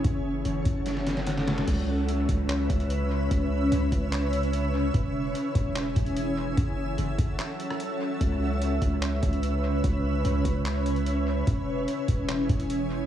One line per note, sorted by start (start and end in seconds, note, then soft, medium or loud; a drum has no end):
0.00 1.64 C#4 medium
0.00 1.64 E5 medium
0.04 0.44 F#1 loud
0.04 1.66 F#3 medium
0.04 1.66 A4 medium
0.04 kick loud
0.04 closed hi-hat medium
0.45 0.65 F#1 loud
0.45 closed hi-hat medium
0.65 1.64 F#1 loud
0.65 kick loud
0.65 closed hi-hat medium
0.86 snare medium
0.86 closed hi-hat medium
0.97 snare medium
1.07 snare medium
1.07 closed hi-hat medium
1.17 snare medium
1.27 snare medium
1.27 closed hi-hat medium
1.37 snare medium
1.48 snare loud
1.58 snare medium
1.68 2.26 C#2 loud
1.68 4.91 C#3 medium
1.68 6.53 C#4 medium
1.68 4.91 B4 medium
1.68 4.91 E5 medium
1.68 kick loud
1.68 closed hi-hat medium
1.68 crash loud
2.09 closed hi-hat medium
2.29 2.68 C#2 loud
2.29 kick loud
2.29 closed hi-hat medium
2.49 clap loud
2.49 closed hi-hat medium
2.70 3.29 C#2 loud
2.70 kick loud
2.70 closed hi-hat medium
2.80 closed hi-hat soft
2.90 closed hi-hat medium
3.31 3.70 C#2 loud
3.31 kick loud
3.31 closed hi-hat medium
3.72 3.91 C#2 loud
3.72 closed hi-hat medium
3.92 4.90 C#2 loud
3.92 kick loud
3.92 closed hi-hat medium
4.12 clap loud
4.12 closed hi-hat medium
4.33 closed hi-hat medium
4.43 closed hi-hat soft
4.53 closed hi-hat medium
4.94 5.33 E1 loud
4.94 6.56 E3 medium
4.94 6.56 G#4 medium
4.94 13.06 E5 medium
4.94 kick loud
4.94 closed hi-hat medium
5.35 closed hi-hat medium
5.55 5.94 E1 loud
5.55 kick loud
5.55 closed hi-hat medium
5.76 clap loud
5.76 closed hi-hat medium
5.96 6.55 E1 loud
5.96 kick loud
5.96 closed hi-hat medium
6.06 closed hi-hat soft
6.17 closed hi-hat medium
6.57 6.97 F#1 loud
6.57 8.19 F#3 medium
6.57 8.19 C#4 medium
6.57 8.19 A4 medium
6.57 kick loud
6.57 closed hi-hat medium
6.98 7.18 F#1 loud
6.98 closed hi-hat medium
7.18 7.38 F#1 loud
7.18 kick loud
7.18 closed hi-hat medium
7.39 clap loud
7.39 closed hi-hat medium
7.60 closed hi-hat medium
7.70 cross-stick medium
7.80 closed hi-hat medium
8.21 8.80 C#2 loud
8.21 11.44 C#3 medium
8.21 13.06 C#4 medium
8.21 11.44 B4 medium
8.21 kick loud
8.21 closed hi-hat medium
8.62 closed hi-hat medium
8.82 9.21 C#2 loud
8.82 kick medium
8.82 closed hi-hat medium
9.02 clap loud
9.02 closed hi-hat medium
9.23 9.82 C#2 loud
9.23 kick loud
9.23 closed hi-hat medium
9.33 closed hi-hat soft
9.43 closed hi-hat medium
9.84 10.23 C#2 loud
9.84 kick loud
9.84 closed hi-hat medium
10.25 10.44 C#2 loud
10.25 closed hi-hat medium
10.45 11.43 C#2 loud
10.45 kick medium
10.45 closed hi-hat medium
10.65 clap loud
10.65 closed hi-hat medium
10.86 closed hi-hat medium
10.96 closed hi-hat soft
11.06 closed hi-hat medium
11.47 11.86 E1 loud
11.47 13.06 E3 medium
11.47 13.06 G#4 medium
11.47 kick loud
11.47 closed hi-hat medium
11.88 closed hi-hat medium
12.08 12.48 E1 loud
12.08 kick loud
12.08 closed hi-hat medium
12.29 clap loud
12.29 closed hi-hat medium
12.49 13.06 E1 loud
12.49 kick loud
12.49 closed hi-hat medium
12.60 closed hi-hat soft
12.70 closed hi-hat medium